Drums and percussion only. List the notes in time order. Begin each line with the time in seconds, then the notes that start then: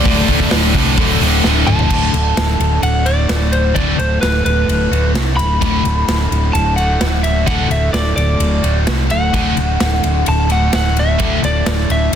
0.05 kick, open hi-hat
0.28 kick, open hi-hat
0.40 kick
0.51 snare, open hi-hat
0.74 kick, open hi-hat
0.98 kick, open hi-hat
1.21 open hi-hat
1.44 snare
1.67 mid tom
1.79 floor tom
1.90 kick, crash
2.14 ride
2.37 snare, ride
2.60 ride
2.83 ride
3.06 ride
3.29 snare, ride
3.53 ride
3.76 kick, ride
3.99 ride
4.23 snare, ride
4.46 ride
4.69 ride
4.93 ride
5.15 snare, ride
5.39 ride
5.62 kick, ride
5.85 ride
6.08 snare, ride
6.32 ride
6.55 ride
6.78 ride
7.01 snare, ride
7.24 ride
7.47 kick, ride
7.71 ride
7.94 snare, ride
8.18 ride
8.40 ride
8.64 ride
8.87 snare, ride
9.10 ride
9.34 kick, ride
9.57 ride
9.80 snare, ride
10.04 ride
10.26 ride
10.50 ride
10.73 snare, ride
10.97 ride
11.20 kick, ride
11.44 ride
11.66 snare, ride
11.90 ride